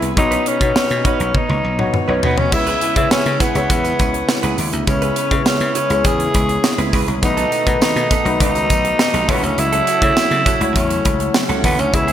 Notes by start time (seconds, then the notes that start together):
Already playing: B3 E4 G#4 E5
0.02 C2, muted clean electric guitar stroke, closed hi-hat
0.16 B1 B2 B3 D#4 F#4 C#5, muted clean electric guitar stroke, kick, closed hi-hat
0.31 C#4 D#4 B4, closed hi-hat
0.45 C#4 D#4 B4, closed hi-hat
0.60 B2 B3 D#4 F#4 C#5, muted clean electric guitar stroke, kick, closed hi-hat
0.76 muted slap bass stroke, snare
0.90 B2, muted clean electric guitar stroke, closed hi-hat
1.04 B3 C#4 D#4 F#4 B4 C#5, kick, closed hi-hat
1.20 B1, muted clean electric guitar stroke, closed hi-hat
1.34 D#4, muted clean electric guitar stroke, kick, high tom
1.49 C#2, muted clean electric guitar stroke, high tom
1.64 B1
1.78 B1 B3 D#4 F#4 C#5, muted clean electric guitar stroke, mid tom
1.93 muted clean electric guitar stroke, muted slap bass stroke, mid tom
2.08 B1 B3 C#4 D#4 F#4 B4 C#5
2.23 B2 B3 C#4 D#4 B4, floor tom
2.38 C#4, muted clean electric guitar stroke, floor tom
2.52 C#2 C#3 G#3 B3 E4 G#4 C#5, muted clean electric guitar stroke, kick, crash, tambourine
2.67 E4 G#4 B4, closed hi-hat, tambourine
2.81 E4 G#4 B4, closed hi-hat, tambourine
2.96 C#3 B3 E4 G#4 C#5, muted clean electric guitar stroke, kick, closed hi-hat
3.11 C#4, muted slap bass stroke, snare, tambourine
3.26 C#3, muted clean electric guitar stroke, closed hi-hat
3.40 B3 E4 G#4 B4, kick, closed hi-hat, tambourine
3.55 C#2 B3 E4 G#4 C#5, muted clean electric guitar stroke, closed hi-hat, tambourine
3.70 E2, muted clean electric guitar stroke, kick, closed hi-hat, tambourine
3.84 muted clean electric guitar stroke, closed hi-hat, tambourine
3.99 C#2, kick, closed hi-hat, tambourine
4.14 muted clean electric guitar stroke, closed hi-hat
4.28 muted clean electric guitar stroke, snare, tambourine
4.43 C#2 E4 G#4 B4, closed hi-hat
4.58 D#2, open hi-hat, tambourine
4.72 D2, muted clean electric guitar stroke, closed hi-hat
4.87 C#2 C#3 B3 C#4 E4 G#4 C#5, muted clean electric guitar stroke, kick, closed hi-hat, tambourine
5.02 E4 G#4 B4, closed hi-hat, tambourine
5.16 E4 G#4 B4, closed hi-hat, tambourine
5.31 C#3 B3 E4 G#4 C#5, muted clean electric guitar stroke, kick, closed hi-hat
5.46 C#4, muted slap bass stroke, snare, tambourine
5.60 C#3, muted clean electric guitar stroke, closed hi-hat
5.75 E4 G#4 B4, closed hi-hat, tambourine
5.90 C#2 B3 E4 G#4 C#5, muted clean electric guitar stroke, closed hi-hat, tambourine
6.04 E2 G#4, muted clean electric guitar stroke, kick, closed hi-hat, tambourine
6.19 muted clean electric guitar stroke, closed hi-hat
6.34 C#2, kick, closed hi-hat, tambourine
6.49 muted clean electric guitar stroke, closed hi-hat
6.64 muted clean electric guitar stroke, snare, tambourine
6.78 C#2 E4 G#4 B4, closed hi-hat
6.93 C#2 E4 G#4 B4, kick, open hi-hat, tambourine
7.07 C2, muted clean electric guitar stroke, closed hi-hat
7.22 B1 B2 D#3 A3 B3 D#4 F#4 B4, muted clean electric guitar stroke, kick, closed hi-hat, tambourine
7.37 B3 D#4 A4, closed hi-hat, tambourine
7.52 B3 D#4 A4, closed hi-hat, tambourine
7.66 B2 A3 D#4 F#4 B4, muted clean electric guitar stroke, kick, closed hi-hat, tambourine
7.81 D#4, muted slap bass stroke, snare, tambourine
7.96 B2, muted clean electric guitar stroke, closed hi-hat
8.11 B3 D#4 A4, kick, closed hi-hat, tambourine
8.25 B1 A3 D#4 F#4 B4, muted clean electric guitar stroke, closed hi-hat
8.40 C#2 D#4, muted clean electric guitar stroke, kick, closed hi-hat, tambourine
8.55 muted clean electric guitar stroke, closed hi-hat, tambourine
8.70 B1, kick, closed hi-hat, tambourine
8.85 muted clean electric guitar stroke, closed hi-hat
8.99 muted clean electric guitar stroke, snare, tambourine
9.14 B1 B3 D#4 A4, closed hi-hat
9.28 C#2 C#3 F#3 A3 B3 C#4 E4 F#4 A4 C#5, kick, open hi-hat, tambourine
9.43 D2 C#4, muted clean electric guitar stroke, closed hi-hat
9.58 C#2 E4, muted clean electric guitar stroke, closed hi-hat, tambourine
9.72 C#4 F#4 A4, closed hi-hat
9.87 C#4 F#4 A4, closed hi-hat, tambourine
10.02 C#3 A3 E4 F#4 C#5, muted clean electric guitar stroke, kick, closed hi-hat
10.17 muted slap bass stroke, snare, tambourine
10.31 C#3, muted clean electric guitar stroke, closed hi-hat
10.46 C#4 F#4 A4, kick, closed hi-hat, tambourine
10.61 C#2 A3 E4 F#4 C#5, muted clean electric guitar stroke, closed hi-hat
10.76 E2 C#4, muted clean electric guitar stroke, kick, closed hi-hat, tambourine
10.90 muted clean electric guitar stroke, closed hi-hat, tambourine
11.05 C#2, kick, closed hi-hat, tambourine
11.20 muted clean electric guitar stroke, closed hi-hat
11.34 muted clean electric guitar stroke, snare, tambourine
11.49 C#2 C#4 F#4 A4, closed hi-hat
11.64 D#2 B3 C#4 F#4 A4, kick, open hi-hat, tambourine
11.78 D2 C#4, muted clean electric guitar stroke, closed hi-hat
11.93 C#2 C#3 G#3 B3 E4 G#4 C#5, muted clean electric guitar stroke, kick, closed hi-hat, tambourine
12.08 B3 E4 G#4, closed hi-hat, tambourine